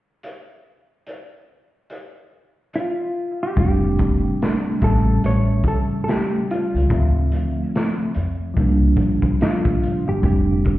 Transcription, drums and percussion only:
0.23 closed hi-hat
1.07 closed hi-hat
1.90 closed hi-hat
2.73 closed hi-hat
3.57 kick, closed hi-hat
3.98 kick, closed hi-hat
4.42 snare, closed hi-hat
4.81 kick, snare, closed hi-hat
5.24 closed hi-hat
5.64 kick, closed hi-hat
6.08 snare, closed hi-hat
6.51 closed hi-hat
6.76 closed hi-hat
6.90 kick, closed hi-hat
7.32 closed hi-hat
7.76 snare, closed hi-hat
8.15 closed hi-hat
8.57 kick, closed hi-hat
8.97 kick, closed hi-hat
9.22 kick, closed hi-hat
9.41 snare, closed hi-hat
9.65 kick
9.83 closed hi-hat
10.23 kick, closed hi-hat
10.65 kick, closed hi-hat

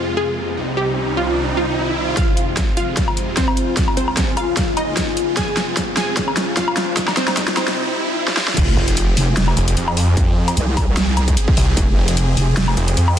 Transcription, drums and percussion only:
2.17 kick, snare, closed hi-hat
2.37 closed hi-hat
2.57 kick, snare, closed hi-hat
2.77 closed hi-hat
2.97 kick, snare, closed hi-hat
3.08 low woodblock
3.17 closed hi-hat
3.37 kick, snare, closed hi-hat
3.48 low woodblock
3.57 closed hi-hat
3.77 kick, snare, closed hi-hat
3.88 low woodblock
3.97 closed hi-hat
4.08 low woodblock
4.17 kick, snare, closed hi-hat
4.37 closed hi-hat, low woodblock
4.57 kick, snare, closed hi-hat
4.77 closed hi-hat, low woodblock
4.97 kick, snare, closed hi-hat
5.17 closed hi-hat
5.37 kick, snare, closed hi-hat
5.57 snare, closed hi-hat
5.77 kick, snare, closed hi-hat
5.97 snare, closed hi-hat
6.17 kick, snare, closed hi-hat
6.28 low woodblock
6.37 snare, closed hi-hat
6.57 kick, snare, closed hi-hat
6.68 low woodblock
6.77 snare, closed hi-hat
6.97 kick, snare, closed hi-hat
7.08 snare, low woodblock
7.17 snare, closed hi-hat
7.28 snare, low woodblock
7.37 kick, snare, closed hi-hat
7.48 snare
7.57 snare, closed hi-hat, low woodblock
7.68 snare
8.28 snare
8.37 snare
8.48 snare
8.57 kick, closed hi-hat, crash
8.88 closed hi-hat
8.97 closed hi-hat
9.17 open hi-hat
9.37 snare, closed hi-hat
9.48 low woodblock
9.57 closed hi-hat
9.68 closed hi-hat
9.77 closed hi-hat
9.88 low woodblock
9.97 open hi-hat
10.17 kick, closed hi-hat
10.48 closed hi-hat, low woodblock
10.57 closed hi-hat
10.77 kick, open hi-hat, low woodblock
10.97 snare, closed hi-hat
11.17 closed hi-hat, low woodblock
11.28 kick, closed hi-hat
11.37 closed hi-hat
11.48 kick
11.57 open hi-hat
11.77 kick, closed hi-hat
12.08 closed hi-hat
12.17 closed hi-hat
12.37 open hi-hat
12.57 snare, closed hi-hat
12.68 low woodblock
12.77 closed hi-hat
12.88 closed hi-hat
12.97 closed hi-hat
13.08 low woodblock

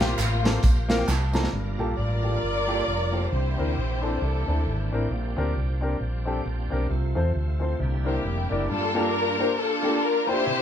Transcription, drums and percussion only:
0.00 snare, closed hi-hat, tambourine
0.19 clap, closed hi-hat, tambourine
0.45 snare, closed hi-hat, tambourine
0.63 kick, closed hi-hat, tambourine
0.90 snare, closed hi-hat, tambourine
1.08 snare, clap, tambourine
1.33 snare, tambourine
1.44 snare

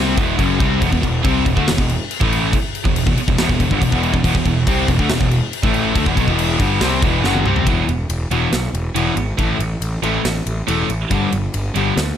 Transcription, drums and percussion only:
0.18 kick, crash
0.39 kick, crash
0.60 kick, crash
0.82 kick, crash
0.93 kick
1.03 kick, crash
1.25 kick, crash
1.46 kick, crash
1.57 kick
1.68 snare, crash
1.78 kick
1.89 crash
2.11 crash
2.21 kick
2.32 crash
2.53 kick, crash
2.75 crash
2.85 kick
2.96 crash
3.07 kick
3.17 crash
3.28 kick
3.38 snare, crash
3.49 kick
3.60 kick, crash
3.71 kick
3.82 kick, crash
3.92 kick
4.03 crash
4.14 kick
4.24 kick, crash
4.35 kick
4.46 kick, crash
4.67 kick, crash
4.88 kick, crash
4.99 kick
5.10 snare, crash
5.21 kick
5.31 crash
5.53 crash
5.63 kick
5.74 crash
5.96 kick, crash
6.06 kick
6.17 kick, crash
6.28 kick
6.39 crash
6.60 kick, crash
6.81 snare, crash
7.02 kick, crash
7.24 snare
7.35 high tom
7.46 mid tom
7.56 floor tom
7.67 kick, ride
7.89 ride
8.10 ride
8.31 ride
8.53 snare, ride
8.75 ride
8.96 ride
9.17 ride
9.39 kick, ride
9.60 ride
9.82 ride
10.03 ride
10.25 snare, ride
10.47 ride
10.68 ride
10.90 ride
11.11 kick, ride
11.32 ride
11.54 ride
11.76 ride
11.97 snare, ride

